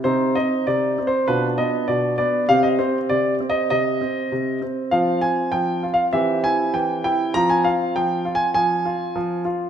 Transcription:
0.04 0.35 C3 medium
0.04 0.35 C4 soft
0.04 1.24 D#4 soft
0.04 0.36 C5 medium
0.35 0.66 C4 soft
0.35 0.67 D#5 medium
0.67 0.97 C3 soft
0.67 1.08 D5 medium
0.98 1.27 C4 soft
1.07 1.26 C5 medium
1.28 1.57 B2 medium
1.28 2.45 D4 soft
1.28 2.45 F4 soft
1.28 1.46 B4 medium
1.58 1.88 B3 soft
1.58 1.88 D#5 medium
1.88 2.18 B2 soft
1.88 2.15 D5 medium
2.18 2.48 B3 soft
2.18 2.46 D5 medium
2.49 2.79 C3 soft
2.49 2.78 C4 soft
2.49 4.89 G4 soft
2.49 2.64 F5 medium
2.63 2.79 D#5 medium
2.79 3.09 C4 soft
2.79 2.97 C5 medium
3.09 3.40 C3 soft
3.09 3.34 D5 medium
3.40 3.70 C4 soft
3.50 3.69 D#5 medium
3.70 4.00 C3 soft
3.70 4.58 D#5 medium
4.01 4.31 C4 soft
4.32 4.61 C3 soft
4.62 4.91 C4 soft
4.91 5.22 F3 soft
4.91 6.10 C4 soft
4.91 5.20 F4 soft
4.91 5.19 F5 medium
5.21 5.52 F4 soft
5.21 5.53 G#5 medium
5.52 5.83 F3 soft
5.52 5.89 G5 medium
5.83 6.13 F4 soft
5.94 6.06 F5 medium
6.13 6.43 E3 medium
6.13 7.31 C4 soft
6.13 7.31 G4 soft
6.13 6.41 E5 medium
6.44 6.74 E4 soft
6.44 6.74 G#5 medium
6.74 7.04 E3 soft
6.74 7.03 G5 medium
7.04 7.34 E4 soft
7.04 7.35 G5 medium
7.34 7.65 F3 medium
7.34 9.70 C4 soft
7.34 7.64 F4 soft
7.34 7.50 A#5 medium
7.50 7.65 G#5 medium
7.64 7.95 F4 soft
7.64 7.95 F5 medium
7.96 8.25 F3 soft
7.96 8.36 G5 medium
8.25 8.55 F4 soft
8.35 8.47 G#5 medium
8.54 8.84 F3 soft
8.54 9.41 G#5 medium
8.85 9.15 F4 soft
9.16 9.45 F3 soft
9.45 9.70 F4 soft

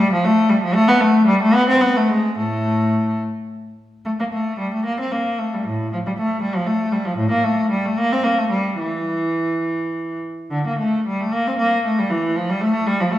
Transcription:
0.00 0.12 G3 loud
0.13 0.25 F3 medium
0.24 0.50 A3 loud
0.49 0.62 G3 medium
0.63 0.76 F3 medium
0.74 0.88 A3 loud
0.88 1.01 B3 loud
1.01 1.28 A3 loud
1.27 1.40 G3 medium
1.42 1.55 A3 loud
1.54 1.68 B3 loud
1.69 1.82 C4 loud
1.81 1.95 B3 medium
1.96 2.10 A3 medium
2.09 2.37 G#3 medium
2.38 3.17 A2 medium
2.38 3.19 A3 medium
4.05 4.11 A3 medium
4.20 4.25 A#3 medium
4.33 4.59 A3 medium
4.59 4.72 G3 medium
4.74 4.86 A3 medium
4.86 4.98 A#3 medium
5.00 5.12 C4 medium
5.12 5.38 A#3 medium
5.39 5.52 A3 medium
5.54 5.67 G3 medium
5.67 5.92 A2 medium
5.93 5.98 F3 medium
6.07 6.11 G3 medium
6.18 6.42 A3 medium
6.42 6.54 G3 medium
6.55 6.67 F3 medium
6.67 6.92 A3 medium
6.92 7.05 G3 medium
7.06 7.18 F3 medium
7.17 7.30 A2 medium
7.31 7.44 A#3 medium
7.44 7.70 A3 medium
7.71 7.84 G3 medium
7.86 7.98 A3 medium
7.98 8.11 A#3 medium
8.12 8.25 C4 medium
8.23 8.37 A#3 medium
8.38 8.51 A3 medium
8.50 8.78 G3 medium
8.79 10.19 E3 medium
10.51 10.65 D3 medium
10.67 10.80 A#3 medium
10.79 11.06 A3 medium
11.07 11.20 G3 medium
11.21 11.33 A3 medium
11.33 11.46 A#3 medium
11.47 11.60 C4 medium
11.59 11.84 A#3 medium
11.86 11.98 A3 medium
11.99 12.11 G3 medium
12.10 12.35 E3 medium
12.36 12.48 F3 medium
12.50 12.62 G3 medium
12.61 12.87 A3 medium
12.87 12.99 G3 medium
13.00 13.12 F3 medium
13.12 13.19 A3 medium

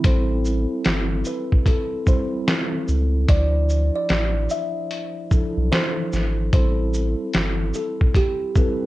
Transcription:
0.03 0.66 A1 loud
0.03 1.51 G3 medium
0.03 1.52 C4 medium
0.03 1.52 E4 medium
0.03 1.53 A4 medium
0.03 1.22 C5 medium
0.03 kick loud
0.03 closed hi-hat loud
0.45 shaker soft
0.84 1.24 G1 medium
0.84 snare loud
0.84 closed hi-hat medium
1.25 1.63 B4 medium
1.25 shaker medium
1.52 kick medium
1.66 2.04 A4 medium
1.66 kick medium
1.66 closed hi-hat medium
2.06 3.17 G3 medium
2.06 3.17 C4 medium
2.06 3.18 E4 medium
2.06 3.18 A4 medium
2.06 3.25 C5 medium
2.06 kick medium
2.06 shaker soft
2.48 snare loud
2.48 closed hi-hat medium
2.88 3.26 C#2 medium
2.88 shaker soft
3.28 3.91 D2 loud
3.28 4.76 F3 medium
3.28 4.76 D4 medium
3.28 4.77 E4 medium
3.28 4.77 C5 medium
3.28 3.91 D5 medium
3.28 kick loud
3.28 closed hi-hat medium
3.69 shaker soft
3.95 4.47 D5 medium
4.09 4.48 A1 loud
4.09 snare medium
4.09 closed hi-hat medium
4.50 5.68 E5 medium
4.50 shaker medium
4.91 closed hi-hat medium
5.31 6.42 F3 medium
5.31 6.42 D4 medium
5.31 6.43 E4 medium
5.31 6.43 A4 medium
5.31 kick medium
5.31 shaker soft
5.57 5.71 B1 medium
5.72 6.08 C5 medium
5.72 snare loud
5.72 closed hi-hat medium
6.13 6.51 G#1 medium
6.13 snare soft
6.13 shaker soft
6.53 7.15 A1 loud
6.53 8.00 G3 medium
6.53 8.01 C4 medium
6.53 8.01 E4 medium
6.53 8.02 A4 medium
6.53 7.71 C5 medium
6.53 kick loud
6.53 closed hi-hat medium
6.94 shaker soft
7.33 7.72 G1 loud
7.33 snare loud
7.33 closed hi-hat medium
7.74 8.12 A4 medium
7.74 shaker medium
8.01 kick medium
8.14 8.52 G4 medium
8.14 kick medium
8.14 closed hi-hat medium
8.55 8.86 G3 medium
8.55 8.86 C4 medium
8.55 8.86 E4 medium
8.55 8.86 A4 medium
8.55 8.86 B4 medium
8.55 kick loud
8.55 shaker soft

